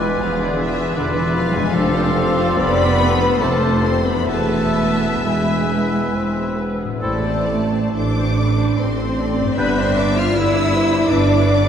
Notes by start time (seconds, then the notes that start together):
Already playing: E1 E2 G#3 B3 D4 E4 F4 B4 G#5 D6
0.05 D4 E4
0.22 E1 F3 E4 F4 G#4 F5
0.41 D3 D4 E4 D5
0.60 E3 E4 F4 E5
0.80 D4 E4
0.95 E1 D3 B3 E4 F4 B4 D5 D6
1.14 E3 D4 E4 E5
1.33 F3 E4 F4 F5
1.52 F2 G#3 D4 E4 G#5
1.60 D4 F4
1.69 F1 F3 A4 F5 D6
1.73 F1 C4 F4 A4
1.94 D4 C5
2.16 C4 A4 C5
2.39 D4 C5
2.57 F1 B3 C4 A4 D5 B5
2.80 D4 C5
3.00 C4 A4 B4
3.20 D4 C5
3.40 F1 A3 C4 F4 A4 C5 A5 D6
3.61 D4 C5
3.82 C4 A4 C6
4.03 B3 D4 C5 B5
4.11 E2
4.16 B3
4.20 E4
4.25 E1 G#3 A3 B3 E4 B4 E5 E6
4.29 B4 A5
4.52 B3 G#4
4.75 G#3 B4
4.99 B3 G#4
5.22 E1 G#3 E4 B4 G#5 E6
5.47 B3 G#4
5.70 G#3 B3 B4
5.92 B3 G#4
6.13 E1 G#3 C4 B4
6.36 B3 G#4
6.58 G#3 B3 B4
6.81 A2 B3 G#4
6.89 C4
6.93 E4
6.98 A1 A3 C4 A4 D5 A5 E6
7.02 A3 E4
7.25 C4 C5
7.48 A3 A4
7.73 C4 C5
7.94 A1 A3 D4 A4 C5 D6
8.18 C4 C5
8.39 A3 A4 B4
8.59 C4 C5
8.78 A1 A3 C4 A4 C5 C6
9.00 C4 C5
9.16 A3 A4 D5
9.38 G2 C4 C5
9.44 D4
9.48 G4
9.53 B4 E5
9.57 G1 G3 B3 D4 B4 B5 G6
9.77 C4 D4 D5 C6
9.96 B3 D4 B4 D6
10.16 D4 F4 D5 F6
10.35 G1 B3 E4 B4 D5 E6
10.56 D4 D5
10.74 B3 B4 C5
10.93 D4 D5
11.09 G1 B3 D4 B4 D6
11.29 D4 D5
11.47 B3 B4 D5